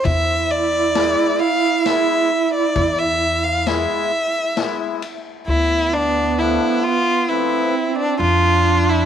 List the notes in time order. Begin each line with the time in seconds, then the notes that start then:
0.03 E2 E4 E5, kick, ride
0.50 D5
0.95 G#3 B3 E4, snare, ride
1.40 F5
1.85 G#3 B3 E4 E5, snare, ride
2.54 D5
2.76 E2, kick, ride
2.99 E5
3.44 F5
3.66 G#3 B3 E4 E5, snare, ride
4.55 G#3 B3 E4, snare, ride
5.02 ride
5.47 D2 B3 E4
5.93 D4
6.39 F3 A3 D4 E4
6.83 F4
7.29 F3 A3 C4 E4 B4
7.98 D4
8.18 F2 D4 F4
8.89 E4